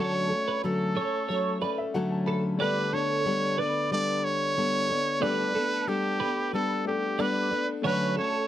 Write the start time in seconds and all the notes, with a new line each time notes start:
Already playing: A3 D4
0.00 D3 F#3 A3 C#4 F#4 A4 C#5
0.30 A3 A4
0.48 B4
0.63 D3 F#3 A3 C#4 A4
0.96 A3 C#4 A4 C#5
1.29 F#3 A3 C#4 A4 C#5
1.61 A3 C#4 A4 B4 D5
1.78 E5
1.94 D3 F#3 A3 C#4 A4 F#5
2.10 A5
2.26 A4 B5
2.57 G3 A3 B3 D4 G4 B4 D5
2.61 A4 B4
2.93 B3 D4 A4 C#5
3.26 G3 B3 D4 A4
3.58 B3 D4 A4 B4 D5
3.91 G3 B3 D4 A4 D5
4.24 C#5
4.57 G3 B3 D4 A4
4.89 B3 D4 A4
5.20 G3 A3 B3 D4 G4 A4 B4 D5
5.54 B3 D4 A4
5.87 G3 B3 D4 G4 A4
6.20 B3 D4 A4 B4
6.53 G3 B3 D4 A4
6.85 A3 D4 G4 A4
7.18 G3 B3 D4 A4 B4 D5
7.51 B3 D4 A4
7.82 D3 F#3 A3 C#4 D4 F#4 A4 C#5
7.86 B4
7.92 C#6
8.17 A3 C#4 A4 C#5